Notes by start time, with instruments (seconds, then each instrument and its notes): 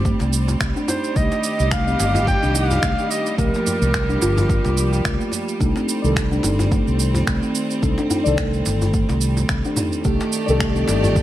Already playing: fretless electric bass G1, string section G3 C4, clarinet G4
0.05 kalimba A3, kick, shaker
0.19 fretless electric bass C2, kalimba C4, djembe slap, djembe tone, shaker
0.33 shaker
0.48 djembe tone, shaker
0.61 fretless electric bass C2, finger snap, kick, shaker
0.76 kalimba D4, shaker
0.88 kalimba D#4, clarinet C5, djembe tone, shaker
1.04 shaker
1.16 fretless electric bass C2, string section D#3 G4 D#5, kalimba A3, clarinet D#5, kick, shaker
1.32 djembe slap, shaker
1.44 shaker
1.59 fretless electric bass C2, shaker
1.71 kalimba A3, clarinet F5, finger snap, kick, shaker
1.87 kalimba C4, shaker
1.99 fretless electric bass G1, djembe slap, shaker
2.15 djembe bass, shaker
2.27 clarinet G5, kick, djembe tone, shaker
2.43 fretless electric bass C2, kalimba D4, shaker
2.55 kalimba D#4, clarinet F5, djembe tone, shaker
2.71 djembe bass, shaker
2.83 fretless electric bass C2, kalimba A3, finger snap, kick, shaker
2.99 shaker
3.11 clarinet D#5, shaker
3.26 shaker
3.38 fretless electric bass C2, string section F3 G4, kalimba A3, clarinet A#4, kick, shaker
3.54 kalimba A#3, djembe slap, shaker
3.67 djembe bass, shaker
3.82 fretless electric bass C2, shaker
3.94 finger snap, kick, shaker
4.09 kalimba D4, shaker
4.22 fretless electric bass G1, kalimba F4, djembe slap, shaker
4.38 djembe bass, shaker
4.49 kalimba A#3, kick, shaker
4.65 fretless electric bass C2, djembe slap, djembe tone, shaker
4.77 shaker
4.92 djembe tone, shaker
5.04 fretless electric bass C2, kalimba A3, finger snap, kick, shaker
5.20 kalimba A#3, shaker
5.32 djembe tone, shaker
5.49 shaker
5.60 fretless electric bass C2, kalimba A3, string section C4, synth keys D4 D#4 A4, kick, shaker
5.76 kalimba C4, djembe slap, shaker
5.89 shaker
6.02 fretless electric bass C2, synth keys D#3 D5, shaker
6.06 synth keys A4
6.16 finger snap, kick, shaker
6.31 kalimba D4, shaker
6.43 fretless electric bass G1, kalimba D#4, djembe slap, shaker
6.59 djembe bass, shaker
6.71 kalimba A3, kick, djembe tone, shaker
6.87 fretless electric bass C2, shaker
6.99 djembe tone, shaker
7.15 djembe bass, shaker
7.27 fretless electric bass C2, kalimba A3, finger snap, kick, shaker
7.43 kalimba C4, shaker
7.55 shaker
7.71 shaker
7.82 fretless electric bass C2, synth keys D4 D#4 A4, kick, shaker
7.98 kalimba D4, djembe slap, shaker
8.10 kalimba D#4, djembe bass, shaker
8.24 fretless electric bass C2, synth keys D#3 A4 D5, shaker
8.38 kalimba A3, finger snap, kick, shaker
8.53 shaker
8.66 fretless electric bass G1, djembe slap, shaker
8.81 djembe bass, shaker
8.94 kalimba A3, kick, shaker
9.09 fretless electric bass C2, kalimba C4, djembe slap, djembe tone, shaker
9.21 shaker
9.37 djembe tone, shaker
9.49 fretless electric bass C2, finger snap, kick, shaker
9.65 kalimba D4, shaker
9.76 kalimba D#4, mid tom, djembe tone, shaker
9.92 shaker
10.04 fretless electric bass C2, string section D#3 A3 G4 D5, kalimba A3, synth keys D4 D#4 G4 A4, kick, shaker
10.20 djembe slap, shaker
10.33 shaker
10.46 fretless electric bass C2, synth keys D#3 G4 D5, shaker
10.50 synth keys A4
10.60 kalimba A3, finger snap, kick, shaker
10.76 kalimba C4, shaker
10.88 fretless electric bass G1, djembe slap, shaker
11.04 djembe bass, shaker
11.16 kick, djembe tone, shaker